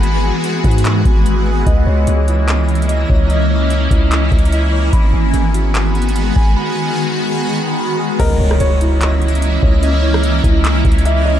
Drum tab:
CC |------------------------------------------------|------------------------------------------------|------------------------------------------------|------------------------------------------------|
HH |x-----------x-----x-x-x-x-----x-----x-----------|x-----------x-----x-----x-----x-x-x-x-----------|x-----------x-----x-----x-----x-x-x-x-----------|x-----------x-----x-----x-----x-x-x-x-----------|
CP |------------------------x-----------------------|------------------------x-----------------------|------------------------x-----------------------|------------------------x-----------------------|
SD |------------------------------------------------|------------------------------------------------|------------------------------------------------|------------------------------------------------|
BD |------------------o-----------o-----------------|o-----------------------------------------o-----|------------------o-----------o-----------------|o-----------------------------------------o-----|

CC |------------------------------------------------|x-----------------------------------------------|------------------------------------------------|
HH |------------------------------------------------|x-----------x-----x-----x-----x-x-x-x-----------|x-----------x-----x-----x-----x-x-x-x-----------|
CP |------------------------------------------------|------------------------x-----------------------|------------------------x-----------------------|
SD |------------------------------------------------|---------r--------------------------------------|---------r--------------------------------------|
BD |------------------------------------------------|o-----------------------------------------o-----|------------------o-----------o-----------------|